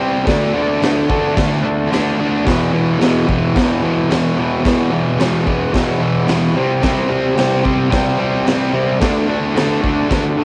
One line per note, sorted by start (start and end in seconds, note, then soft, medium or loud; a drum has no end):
0.00 0.24 C3 medium
0.00 0.25 G3 medium
0.00 0.25 C4 medium
0.26 0.53 D3 loud
0.26 0.54 A3 loud
0.26 0.55 D4 loud
0.26 kick loud
0.26 snare loud
0.26 crash medium
0.54 0.81 D3 loud
0.54 0.82 A3 medium
0.54 0.83 D4 loud
0.82 1.08 D3 loud
0.82 1.09 A3 loud
0.82 1.10 D4 loud
0.82 snare loud
0.82 crash medium
1.09 1.35 D3 medium
1.09 1.36 A3 loud
1.09 1.37 D4 medium
1.09 kick medium
1.36 1.62 D3 loud
1.36 1.63 A3 loud
1.36 1.64 D4 loud
1.36 kick loud
1.36 snare loud
1.36 crash medium
1.63 1.90 D3 medium
1.63 1.91 A3 medium
1.63 1.92 D4 loud
1.91 2.17 D3 medium
1.91 2.18 A3 loud
1.91 2.19 D4 loud
1.91 snare loud
1.91 crash medium
2.19 2.44 D3 medium
2.19 2.45 A3 loud
2.19 2.45 D4 loud
2.44 2.71 E2 loud
2.44 2.72 B2 loud
2.44 2.74 E3 loud
2.44 kick loud
2.44 snare loud
2.44 crash medium
2.72 2.98 E2 loud
2.72 2.99 B2 medium
2.72 3.00 E3 medium
2.99 3.26 E2 loud
2.99 3.27 B2 loud
2.99 3.28 E3 loud
2.99 snare loud
2.99 crash medium
3.27 3.53 E2 medium
3.27 3.55 B2 medium
3.27 3.57 E3 loud
3.27 kick medium
3.55 3.81 E2 loud
3.55 3.82 B2 medium
3.55 3.84 E3 loud
3.55 kick loud
3.55 snare loud
3.55 crash medium
3.82 4.08 E2 medium
3.82 4.10 B2 loud
3.82 4.11 E3 loud
4.09 4.35 E2 medium
4.09 4.37 B2 loud
4.09 4.39 E3 medium
4.09 snare loud
4.09 crash medium
4.37 4.63 E2 medium
4.37 4.64 B2 loud
4.37 4.66 E3 loud
4.64 4.90 E2 loud
4.64 4.91 B2 loud
4.64 4.93 E3 loud
4.64 kick loud
4.64 snare loud
4.64 crash medium
4.91 5.17 E2 medium
4.91 5.18 B2 loud
4.91 5.20 E3 loud
5.19 5.45 E2 loud
5.19 5.46 B2 loud
5.19 5.48 E3 loud
5.19 snare loud
5.19 crash medium
5.47 5.72 E2 medium
5.47 5.73 B2 medium
5.47 5.74 E3 medium
5.47 kick medium
5.73 5.99 E2 loud
5.73 6.00 B2 loud
5.73 6.01 E3 loud
5.73 kick loud
5.73 snare loud
5.73 crash medium
6.00 6.26 E2 medium
6.00 6.28 B2 medium
6.00 6.28 E3 medium
6.27 6.54 E2 medium
6.27 6.54 B2 loud
6.27 6.55 E3 loud
6.27 snare loud
6.27 crash medium
6.55 6.81 C3 medium
6.55 6.82 G3 loud
6.55 6.83 C4 loud
6.82 7.08 C3 loud
6.82 7.09 G3 loud
6.82 7.10 C4 loud
6.82 kick loud
6.82 snare loud
6.82 crash medium
7.09 7.35 C3 loud
7.09 7.36 G3 medium
7.09 7.37 C4 loud
7.36 7.62 C3 loud
7.36 7.63 G3 loud
7.36 7.64 C4 loud
7.36 snare loud
7.36 crash medium
7.64 7.89 C3 medium
7.64 7.90 G3 medium
7.64 7.91 C4 medium
7.64 kick medium
7.91 8.17 C3 loud
7.91 8.18 G3 loud
7.91 8.19 C4 loud
7.91 kick loud
7.91 snare loud
7.91 crash medium
8.18 8.44 C3 loud
8.18 8.45 G3 medium
8.18 8.46 C4 loud
8.45 8.72 C3 loud
8.45 8.73 G3 loud
8.45 8.73 C4 loud
8.45 snare loud
8.45 crash medium
8.73 8.99 C3 medium
8.73 9.00 G3 medium
8.73 9.00 C4 loud
9.00 9.27 D3 loud
9.00 9.28 A3 loud
9.00 9.28 D4 loud
9.00 kick loud
9.00 snare loud
9.00 crash medium
9.28 9.54 D3 medium
9.28 9.55 A3 loud
9.28 9.55 D4 loud
9.55 9.81 D3 loud
9.55 9.82 A3 loud
9.55 9.82 D4 loud
9.55 snare loud
9.55 crash medium
9.82 10.08 D3 medium
9.82 10.09 A3 medium
9.82 10.10 D4 loud
9.82 kick medium
10.09 10.36 D3 loud
10.09 10.37 A3 loud
10.09 10.38 D4 loud
10.09 kick loud
10.09 snare loud
10.09 crash medium
10.37 10.44 D3 medium
10.37 10.44 A3 loud
10.37 10.44 D4 medium